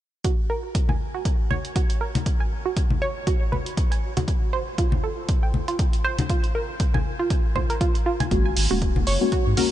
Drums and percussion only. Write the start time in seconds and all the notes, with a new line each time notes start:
0.24 kick, closed hi-hat
0.75 kick, closed hi-hat
0.89 high conga
1.25 kick, closed hi-hat
1.51 high conga
1.65 closed hi-hat
1.76 kick, closed hi-hat
1.90 closed hi-hat
2.15 closed hi-hat, high conga
2.26 kick, closed hi-hat
2.77 kick, closed hi-hat
2.90 high conga
3.27 kick, closed hi-hat
3.53 high conga
3.66 closed hi-hat
3.77 kick, closed hi-hat
3.92 closed hi-hat
4.17 closed hi-hat, high conga
4.28 kick, closed hi-hat
4.78 kick, closed hi-hat
4.92 high conga
5.29 kick, closed hi-hat
5.54 high conga
5.68 closed hi-hat
5.79 kick, closed hi-hat
5.93 closed hi-hat
6.19 closed hi-hat, high conga
6.30 kick, closed hi-hat
6.44 closed hi-hat
6.80 kick, closed hi-hat
6.94 high conga
7.30 kick, closed hi-hat
7.56 kick, high conga
7.70 closed hi-hat
7.81 kick, closed hi-hat
7.95 closed hi-hat
8.20 closed hi-hat, high conga
8.31 kick, closed hi-hat
8.57 open hi-hat
8.82 kick, closed hi-hat
8.96 high conga
9.07 open hi-hat
9.32 kick, closed hi-hat
9.57 open hi-hat, high conga